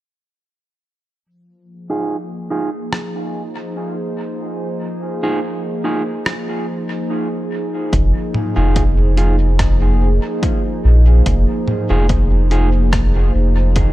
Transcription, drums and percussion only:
2.93 cross-stick
6.26 cross-stick
7.93 kick, closed hi-hat
8.34 mid tom
8.76 kick, closed hi-hat
9.17 closed hi-hat
9.59 kick, cross-stick, closed hi-hat
10.43 kick, closed hi-hat
11.26 kick, closed hi-hat
11.68 mid tom
12.09 kick, closed hi-hat
12.51 closed hi-hat
12.93 kick, cross-stick, closed hi-hat
13.76 kick, closed hi-hat

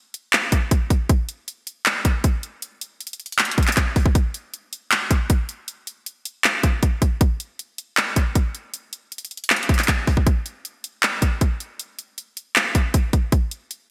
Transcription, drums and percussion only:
0.14 closed hi-hat
0.33 clap, closed hi-hat
0.52 kick, closed hi-hat
0.71 kick, closed hi-hat
0.90 kick, closed hi-hat
1.09 kick, closed hi-hat
1.29 closed hi-hat
1.48 closed hi-hat
1.67 closed hi-hat
1.86 clap, closed hi-hat
2.05 kick, closed hi-hat
2.24 kick, closed hi-hat
2.43 closed hi-hat
2.62 closed hi-hat
2.81 closed hi-hat
3.00 closed hi-hat
3.07 closed hi-hat
3.13 closed hi-hat
3.20 closed hi-hat
3.26 closed hi-hat
3.32 closed hi-hat
3.39 clap, closed hi-hat
3.45 closed hi-hat
3.51 closed hi-hat
3.58 kick, closed hi-hat
3.63 closed hi-hat
3.67 clap, closed hi-hat
3.72 closed hi-hat
3.77 kick, clap, closed hi-hat
3.96 kick, open hi-hat
4.06 kick
4.15 kick, closed hi-hat
4.34 closed hi-hat
4.54 closed hi-hat
4.73 closed hi-hat
4.92 clap, closed hi-hat
5.11 kick, closed hi-hat
5.30 kick, closed hi-hat
5.49 closed hi-hat
5.68 closed hi-hat
5.87 closed hi-hat
6.06 closed hi-hat
6.25 closed hi-hat
6.44 clap, closed hi-hat
6.63 kick, closed hi-hat
6.83 kick, closed hi-hat
7.02 kick, closed hi-hat
7.21 kick, closed hi-hat
7.40 closed hi-hat
7.59 closed hi-hat
7.78 closed hi-hat
7.97 clap, closed hi-hat
8.16 kick, closed hi-hat
8.35 kick, closed hi-hat
8.55 closed hi-hat
8.74 closed hi-hat
8.93 closed hi-hat
9.12 closed hi-hat
9.18 closed hi-hat
9.25 closed hi-hat
9.31 closed hi-hat
9.37 closed hi-hat
9.44 closed hi-hat
9.50 clap, closed hi-hat
9.56 closed hi-hat
9.63 closed hi-hat
9.69 kick, closed hi-hat
9.74 closed hi-hat
9.79 clap, closed hi-hat
9.83 closed hi-hat
9.88 kick, clap, closed hi-hat
10.07 kick, open hi-hat
10.17 kick
10.27 kick, closed hi-hat
10.46 closed hi-hat
10.65 closed hi-hat
10.84 closed hi-hat
11.03 clap, closed hi-hat
11.22 kick, closed hi-hat
11.41 kick, closed hi-hat
11.60 closed hi-hat
11.79 closed hi-hat
11.99 closed hi-hat
12.18 closed hi-hat
12.37 closed hi-hat
12.56 clap, closed hi-hat
12.75 kick, closed hi-hat
12.94 kick, closed hi-hat
13.13 kick, closed hi-hat
13.32 kick, closed hi-hat
13.51 closed hi-hat
13.71 closed hi-hat

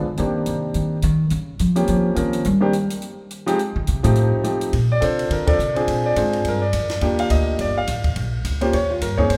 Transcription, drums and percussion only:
0.17 closed hi-hat
0.46 closed hi-hat
0.74 closed hi-hat
1.02 closed hi-hat
1.30 closed hi-hat
1.59 closed hi-hat
1.76 closed hi-hat
1.87 closed hi-hat
2.16 closed hi-hat
2.33 closed hi-hat
2.45 closed hi-hat
2.73 closed hi-hat
2.90 closed hi-hat
3.02 closed hi-hat
3.31 closed hi-hat
3.48 closed hi-hat
3.59 closed hi-hat
3.87 closed hi-hat
4.04 closed hi-hat
4.16 closed hi-hat
4.44 closed hi-hat
4.61 closed hi-hat
4.73 kick, ride
5.02 kick, hi-hat pedal, ride
5.19 ride
5.31 kick, ride
5.47 kick, ride
5.59 hi-hat pedal
5.76 ride
5.88 kick, ride
6.16 kick, hi-hat pedal, ride
6.33 ride
6.45 kick, ride
6.73 kick, hi-hat pedal, ride
6.90 snare, ride
7.01 kick, ride
7.19 ride
7.30 kick, hi-hat pedal, ride
7.59 kick, ride
7.87 kick, hi-hat pedal, ride
8.04 kick, ride
8.16 kick, ride
8.45 kick, hi-hat pedal, ride
8.61 ride
8.73 kick, ride
9.01 kick, hi-hat pedal, ride
9.18 kick
9.30 kick, ride

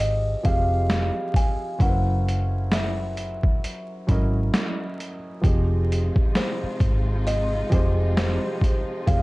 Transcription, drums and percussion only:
0.00 closed hi-hat
0.45 kick, closed hi-hat
0.90 snare, closed hi-hat
1.34 kick, closed hi-hat
1.80 kick, closed hi-hat
2.28 closed hi-hat
2.72 snare, closed hi-hat
3.17 closed hi-hat
3.43 kick
3.64 closed hi-hat
4.09 kick, closed hi-hat
4.54 snare, closed hi-hat
5.00 closed hi-hat
5.44 kick, closed hi-hat
5.92 closed hi-hat
6.16 kick
6.35 snare, closed hi-hat
6.80 kick, closed hi-hat
7.27 closed hi-hat
7.72 kick, closed hi-hat
8.17 snare, closed hi-hat
8.61 kick, closed hi-hat
9.07 kick, closed hi-hat

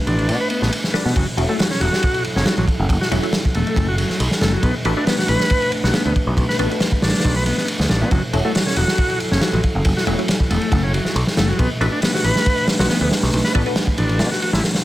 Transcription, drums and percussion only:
0.07 ride
0.19 ride
0.29 ride
0.50 ride
0.62 snare
0.73 ride
0.84 snare
0.94 snare, open hi-hat
1.06 snare
1.16 kick, ride
1.38 ride
1.59 snare, open hi-hat
1.71 snare
1.81 ride
1.93 snare
2.03 kick, ride
2.14 ride
2.25 ride
2.36 snare
2.46 snare, ride
2.57 ride
2.68 kick, ride
2.89 kick, ride
3.02 snare
3.12 ride
3.23 ride
3.33 snare, ride
3.45 kick
3.55 ride
3.67 ride
3.76 kick, ride
3.98 ride
4.10 snare
4.20 ride
4.31 snare
4.41 snare, ride
4.63 kick, ride
4.85 ride
5.07 snare, open hi-hat
5.19 snare
5.28 ride
5.40 snare
5.50 kick, ride
5.62 ride
5.72 ride
5.84 snare
5.94 snare, ride
6.05 ride
6.16 kick, ride
6.37 kick, ride
6.49 snare
6.59 ride
6.71 ride
6.80 snare, ride
6.92 kick
7.02 snare, open hi-hat
7.08 snare, open hi-hat
7.14 snare, open hi-hat
7.19 snare, open hi-hat
7.24 kick, ride
7.46 ride
7.58 snare
7.68 ride
7.80 snare
7.89 snare, ride
8.11 kick, ride
8.33 ride
8.55 snare, open hi-hat
8.67 snare
8.76 ride
8.88 snare
8.98 kick, ride
9.10 ride
9.20 ride
9.31 snare
9.41 snare, ride
9.54 ride
9.63 kick, ride
9.85 kick, ride
9.97 snare
10.07 ride
10.19 ride
10.28 snare, ride
10.40 kick
10.51 ride
10.62 ride
10.72 kick, ride
10.94 ride
11.05 snare
11.16 ride
11.27 snare
11.37 snare, ride
11.59 kick, ride
11.81 ride
12.02 snare, open hi-hat
12.15 snare
12.24 ride
12.36 snare
12.46 kick, ride
12.58 ride
12.68 snare, open hi-hat
12.79 snare, open hi-hat
12.89 snare, ride
13.02 ride
13.11 snare, open hi-hat
13.23 snare
13.34 ride
13.44 snare
13.55 kick, ride
13.66 ride
13.76 snare, ride
13.87 kick
13.98 ride
14.09 ride
14.19 snare, open hi-hat
14.32 snare
14.42 ride
14.53 snare, open hi-hat
14.64 snare, open hi-hat
14.74 snare, open hi-hat

